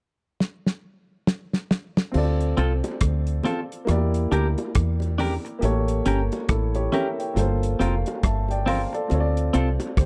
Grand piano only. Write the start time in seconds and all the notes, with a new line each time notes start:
2.12 C4 F4
2.16 A4 D5
3.85 A#3 E4
3.89 G4 D5
5.59 A#3 G4
5.63 A4 C#5
6.48 E4 A4
6.75 G4 C#5
6.92 A#4 E5
7.19 C#5 G5
7.34 A#3 F4 A4
7.39 C5
7.80 F5
8.23 E5 A5
8.51 D5 G5
8.68 C5 F5 C6
8.94 A4 D5
9.08 C4 F4
9.12 A4 C#5
9.20 D5
9.97 G4 C5